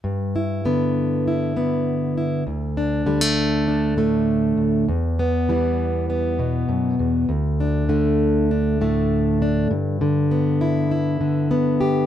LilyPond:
\new Staff \with { instrumentName = "Steel-string acoustic guitar" } { \time 4/4 \key g \lydian \tempo 4 = 100 << { r8 e'8 b4 e'8 b4 e'8 | r8 d'8 g16 a8. d'8 a4. | r8 b8 g4 b2 | r8 d'8 a4 d'8 a4 d'8 |
r4 b8 e'8 e'4 b8 g'8 | } \\ { g,4 d4. d4. | d,4 d4. a,4 d,8 | e,4 e4. b,8 fis,8 e,8 | d,4 d4. a,4. |
g,8 d2 d4. | } >> }